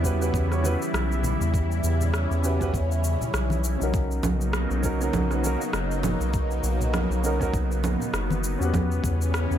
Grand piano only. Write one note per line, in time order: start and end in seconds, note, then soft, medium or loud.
0.02 0.16 C#4 medium
0.02 0.17 F#4 medium
0.02 0.17 G4 medium
0.02 0.18 B4 medium
0.19 0.46 C#4 medium
0.19 0.47 F#4 medium
0.19 0.47 G4 medium
0.19 0.47 B4 medium
0.50 0.60 C#4 medium
0.50 0.61 F#4 medium
0.50 0.61 G4 medium
0.50 0.61 C#5 medium
0.63 0.77 C#4 medium
0.63 0.78 F#4 medium
0.63 0.78 G4 medium
0.63 0.79 B4 medium
2.43 2.56 C#4 medium
2.43 2.57 F#4 medium
2.43 2.57 G4 medium
2.43 2.58 B4 medium
2.59 2.71 C#4 medium
2.59 2.71 F#4 medium
2.59 2.72 G4 medium
2.59 2.72 B4 medium
3.78 4.79 C#4 medium
3.78 4.80 D#4 medium
3.78 4.81 F#4 medium
3.83 4.82 A#4 medium
4.83 4.96 C#4 medium
4.83 4.97 D#4 medium
4.83 4.97 F#4 medium
4.83 4.98 A#4 medium
5.00 5.27 C#4 medium
5.00 5.27 D#4 medium
5.00 5.28 F#4 medium
5.00 5.28 A#4 medium
5.30 5.41 C#4 medium
5.30 5.41 D#4 medium
5.30 5.42 F#4 medium
5.30 5.42 B4 medium
5.43 5.58 C#4 medium
5.43 5.58 D#4 medium
5.43 5.59 F#4 medium
5.43 5.59 A#4 medium
7.23 7.37 C#4 medium
7.23 7.37 D#4 medium
7.23 7.38 F#4 medium
7.23 7.38 A#4 medium
7.40 7.51 C#4 medium
7.40 7.51 D#4 medium
7.40 7.52 F#4 medium
7.40 7.52 A#4 medium
8.58 9.58 C#4 medium
8.58 9.58 F#4 medium
8.58 9.58 G4 medium
8.64 9.58 B4 medium